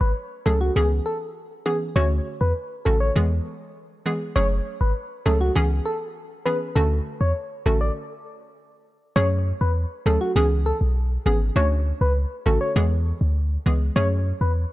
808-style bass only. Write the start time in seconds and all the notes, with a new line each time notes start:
0.01 G#1
0.46 C#2
0.76 C#2
1.96 D2
2.41 E2
2.86 A1
3.16 E2
4.36 F#1
4.81 G#1
5.26 C#2
5.56 C#2
6.76 D2
7.21 E2
7.66 A1
9.16 F#2
9.61 E2
10.06 D2
10.36 C#2
10.81 B1
11.26 G#1
11.56 D2
12.01 C#2
12.46 A1
12.76 E2
13.21 D2
13.66 C#2
13.96 F#2
14.41 E2